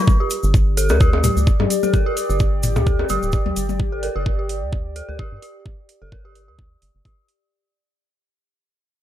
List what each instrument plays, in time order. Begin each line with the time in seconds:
0.08 ambient pad G4, kick, shaker
0.20 synth bell G4
0.30 ambient pad D5, open hi-hat, shaker
0.43 analog synth bass G1, shaker
0.54 kick, shaker
0.77 synth bell A4, open hi-hat, shaker
0.89 analog synth bass D2, synth bell A#4, high bongo, shaker
1.01 synth bell G4, kick, shaker
1.13 high bongo
1.24 synth bell G4, mid tom, open hi-hat, high tom, shaker
1.37 analog synth bass D2, shaker
1.47 kick, shaker
1.60 analog synth bass G2, high tom, high bongo
1.70 open hi-hat, shaker
1.83 synth bell A4, high tom, shaker
1.94 synth bell A#4, kick, shaker
2.06 synth bell G4
2.17 open hi-hat, shaker
2.30 analog synth bass G1, synth bell G4, shaker
2.40 kick, shaker
2.63 mid tom, open hi-hat, shaker
2.76 analog synth bass D2, mid tom, high bongo, shaker
2.87 synth bell A4, kick, shaker
2.99 synth bell A#4, high bongo
3.09 analog synth bass G1, synth bell G4, open hi-hat, high tom, shaker
3.23 analog synth bass D1, shaker
3.32 synth bell G4, kick, shaker
3.46 analog synth bass D2, high tom
3.56 analog synth bass G1, open hi-hat, shaker
3.69 high tom, shaker
3.80 kick
3.92 synth bell A4
4.03 synth bell A#4, open hi-hat
4.16 analog synth bass G1, synth bell G4
4.26 kick
4.39 synth bell G4
4.49 open hi-hat
4.62 analog synth bass D2
4.73 kick
4.96 synth bell A4, open hi-hat
5.09 analog synth bass D2, synth bell A#4
5.19 synth bell G4, kick
5.32 analog synth bass G2
5.42 synth bell G4, open hi-hat
5.66 kick
5.89 open hi-hat
6.02 analog synth bass G1, synth bell A4
6.12 synth bell A#4, kick
6.25 synth bell G4
6.35 open hi-hat
6.48 analog synth bass D2, synth bell G4
6.59 kick
6.82 analog synth bass G1, open hi-hat
6.95 analog synth bass G1
7.05 synth bell G4, kick, open hi-hat
7.29 open hi-hat